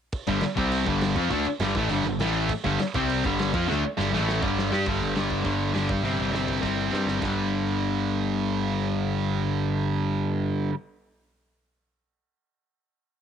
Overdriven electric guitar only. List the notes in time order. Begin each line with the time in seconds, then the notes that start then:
0.27 G2 D3 G3
0.43 muted overdriven electric guitar stroke
0.56 C3 G3 C4
0.86 G2 D3 G3
1.16 F3 C4 F4
1.31 D3 A3 D4
1.47 muted overdriven electric guitar stroke
1.62 G2 D3 G3
1.77 A2 E3 A3
1.90 G2 D3 G3
2.06 G2 D3
2.20 A2 E3 A3
2.64 G2 D3 G3
2.80 muted overdriven electric guitar stroke
2.95 C3 G3 C4
3.24 G2 D3 G3
3.54 F3 C4 F4
3.68 D3 A3 D4
3.82 muted overdriven electric guitar stroke
3.97 G2 D3 G3
4.13 A2 E3 A3
4.41 G2 D3 G3
4.70 G3 D4 G4
4.86 G2 D3 G3
5.15 G2 D3 G3
5.43 G2 D3 G3
5.74 G2 D3 G3
6.02 C3 G3 C4
6.33 C3 G3 C4
6.62 C3 G3 C4
6.91 C3 G3 C4
7.21 G2 D3
7.25 G3